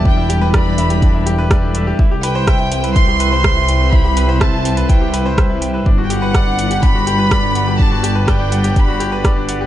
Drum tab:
HH |--x-x-xxx-x-x-x-|--x-x-xxx-x-x-x-|--x-x-xxx-x-x-x-|--x-x-xxx-x-x-x-|
SD |----r-------r---|----r-------r---|----r-------r---|----r-------r---|
BD |o---o---o---o---|o---o---o---o---|o---o---o---o---|o---o---o---o---|

HH |--x-x-xxx-x-x-x-|
SD |----r-------r---|
BD |o---o---o---o---|